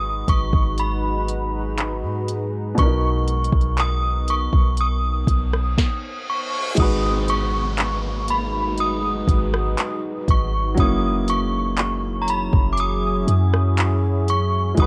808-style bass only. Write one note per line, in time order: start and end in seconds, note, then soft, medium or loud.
0.00 0.24 G#1 loud
0.28 0.52 G#1 loud
0.53 2.04 G#1 loud
2.03 2.74 G#2 loud
2.78 3.50 B1 loud
3.52 4.49 B1 loud
4.53 5.25 B1 loud
5.27 5.76 B1 loud
6.78 9.24 G#1 loud
9.28 9.76 G#1 loud
10.28 10.76 G#1 loud
10.78 12.49 F#1 loud
12.53 13.25 F#1 loud
13.28 14.74 F#2 loud
14.78 14.87 G#1 loud